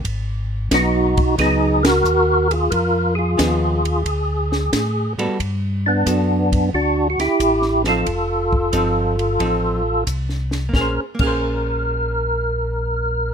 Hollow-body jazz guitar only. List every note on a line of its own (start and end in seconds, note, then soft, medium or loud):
0.72 1.13 F#3 medium
0.72 1.13 B3 medium
0.72 1.13 D#4 medium
1.38 1.80 F#3 medium
1.38 1.80 B3 medium
1.38 1.80 D#4 medium
3.37 3.80 F3 medium
3.37 3.80 B3 medium
3.37 3.80 D#4 medium
3.37 3.80 G#4 medium
5.19 5.37 G3 medium
5.19 5.37 B3 medium
5.19 5.37 F#4 medium
5.19 5.38 A4 medium
6.06 6.48 B3 medium
6.06 6.48 F#4 medium
6.06 6.48 A4 medium
7.86 8.04 F3 medium
7.86 8.04 C4 medium
7.86 8.05 D#4 medium
7.86 8.05 A4 medium
8.72 9.14 F3 soft
8.72 9.15 C4 medium
8.72 9.15 D#4 medium
8.72 9.15 A4 medium
9.39 9.81 F3 medium
9.39 9.81 C4 medium
9.39 9.82 D#4 medium
9.39 9.82 A4 medium
10.69 10.99 A#3 medium
10.74 11.01 C#4 medium
10.74 11.03 G#4 medium
10.81 11.05 C5 medium
11.15 13.34 A#3 medium
11.20 13.34 C#4 medium
11.20 13.34 G#4 medium
11.27 13.34 C5 medium